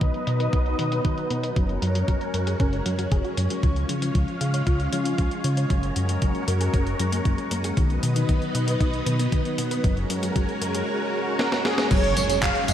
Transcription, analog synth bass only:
0.01 0.12 B1 medium
0.27 0.48 B2 medium
0.53 0.74 B1 medium
0.79 1.00 B2 medium
1.05 1.15 B1 medium
1.30 1.52 B2 medium
1.56 1.78 F#1 medium
1.82 2.04 F#2 medium
2.08 2.19 F#1 medium
2.34 2.55 F#2 medium
2.60 2.81 F#1 medium
2.86 3.07 F#2 medium
3.12 3.22 F#1 medium
3.37 3.48 F#2 medium
3.63 3.85 C#2 loud
3.89 4.10 C#3 medium
4.15 4.26 C#2 medium
4.41 4.62 C#3 medium
4.67 4.88 C#2 medium
4.93 5.14 C#3 medium
5.18 5.29 C#2 medium
5.44 5.66 C#3 medium
5.70 5.92 F#1 loud
5.96 6.17 F#2 medium
6.22 6.33 F#1 medium
6.48 6.69 F#2 medium
6.74 6.95 F#1 medium
6.99 7.21 F#2 medium
7.25 7.36 F#1 medium
7.51 7.72 F#2 medium
7.77 7.98 B1 loud
8.03 8.24 B2 medium
8.29 8.39 B1 medium
8.55 8.76 B2 medium
8.81 9.02 B1 medium
9.06 9.28 B2 medium
9.32 9.43 B1 medium
9.58 9.79 B2 medium
9.84 10.05 F#1 loud
10.10 10.31 F#2 medium
10.36 10.46 F#1 medium
10.61 10.83 F#2 medium
11.91 12.12 F#1 loud
12.17 12.38 F#2 loud
12.43 12.53 F#1 medium
12.68 12.73 F#2 medium

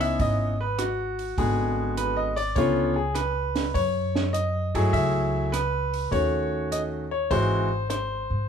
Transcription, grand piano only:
0.00 0.52 B3 medium
0.00 0.52 C#4 medium
0.00 0.52 D#4 medium
0.00 0.52 E4 medium
0.00 0.21 E5 medium
0.21 0.58 D#5 medium
0.61 0.78 B4 medium
0.79 1.37 F#4 medium
1.38 2.29 D3 soft
1.38 2.29 G#3 soft
1.38 2.30 B3 soft
1.38 2.30 F#4 medium
1.38 1.93 G#4 medium
1.97 2.18 B4 medium
2.17 2.35 D#5 medium
2.36 2.55 D5 medium
2.56 2.93 D3 medium
2.56 2.93 B3 medium
2.56 2.93 C#4 medium
2.56 2.93 F4 medium
2.56 2.97 C#5 medium
2.96 3.14 G#4 medium
3.15 3.76 B4 medium
3.74 4.30 C#5 medium
4.33 4.95 D#5 medium
4.75 5.49 F#3 medium
4.75 5.49 A3 medium
4.75 5.49 E4 medium
4.75 5.50 G#4 medium
4.93 5.54 E5 medium
5.52 6.08 B4 medium
6.11 7.03 D#3 medium
6.11 7.03 A3 soft
6.11 7.03 C#4 soft
6.11 7.03 F#4 medium
6.11 6.67 C#5 medium
6.72 6.81 D#5 medium
7.11 7.31 C#5 medium
7.31 7.67 E3 medium
7.31 7.67 G#3 medium
7.31 7.68 C4 medium
7.31 7.68 F#4 medium
7.31 7.86 C5 medium
7.90 8.49 C5 medium

